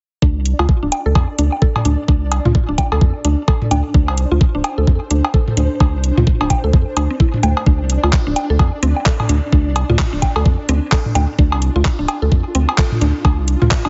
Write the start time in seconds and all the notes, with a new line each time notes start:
0.22 D2 D4 D5, kick
0.36 C2
0.45 closed hi-hat
0.59 D2 F4, cowbell
0.69 kick
0.83 D1 D4
0.92 closed hi-hat, low woodblock
1.06 D2 A4
1.15 F2, kick, cowbell
1.39 D2 D4, closed hi-hat
1.52 low woodblock
1.62 A4, kick
1.76 mid tom, cowbell
1.85 D2 D4, closed hi-hat
2.08 D2 D4, kick
2.22 C2
2.32 closed hi-hat, cowbell
2.45 D2 F4, mid tom
2.55 kick
2.69 D1 D4
2.78 kick, closed hi-hat, low woodblock
2.92 D2 A4, cowbell
3.01 F2, kick
3.25 D2 D4, closed hi-hat
3.48 A4, kick, cowbell
3.62 mid tom
3.71 D2 D4, closed hi-hat, low woodblock
3.94 D2 D4 C5, kick
4.08 C2, cowbell
4.18 closed hi-hat
4.31 D2 F4
4.41 kick
4.55 D1 D4
4.64 closed hi-hat, cowbell, low woodblock
4.78 D2 A4
4.87 F2, kick
5.11 D2 D4, closed hi-hat
5.25 cowbell, low woodblock
5.34 A4, kick
5.48 mid tom
5.57 D2 D4, closed hi-hat
5.80 D2 D4, kick, cowbell
5.94 C2
6.04 closed hi-hat
6.17 D2 F4, mid tom
6.27 kick
6.41 D1 D4, cowbell
6.50 kick, closed hi-hat, low woodblock
6.64 D2 A4
6.73 F2, kick
6.97 D2 D4, closed hi-hat, cowbell
7.10 C4
7.20 E4, kick
7.34 mid tom
7.43 D2 A3, closed hi-hat, low woodblock
7.57 cowbell
7.66 D2 D4 D5, kick
7.80 C2
7.90 closed hi-hat
8.03 D2 F4, cowbell
8.13 kick, clap
8.27 D1 D4
8.36 closed hi-hat, low woodblock
8.50 D2 A4
8.59 F2, kick, cowbell
8.83 D2 C4, closed hi-hat
8.96 low woodblock
9.06 A4, kick, clap
9.20 mid tom, cowbell
9.29 D2 D4, closed hi-hat
9.53 D2 D4, kick
9.66 C2
9.76 closed hi-hat, cowbell
9.89 D2 F4, mid tom
9.99 kick, clap
10.13 D1 D4
10.22 kick, closed hi-hat, low woodblock
10.36 D2 A4, cowbell
10.46 F2, kick
10.69 D2 C4, closed hi-hat
10.92 A4, kick, clap, cowbell
11.06 mid tom
11.15 D2 D4, closed hi-hat, low woodblock
11.39 D2 D4 F4, kick
11.52 C2, cowbell
11.62 closed hi-hat
11.76 D2 F4
11.85 kick, clap
11.99 D1 D4
12.08 closed hi-hat, cowbell, low woodblock
12.22 D2 A4
12.32 F2, kick
12.55 D2 C4, closed hi-hat
12.69 cowbell, low woodblock
12.78 A4, kick, clap
12.92 mid tom
13.01 D2 D4, closed hi-hat
13.25 D2 D4, kick, cowbell
13.38 C2
13.48 closed hi-hat
13.62 D2 F4, mid tom
13.71 kick, clap
13.85 D1 D4, cowbell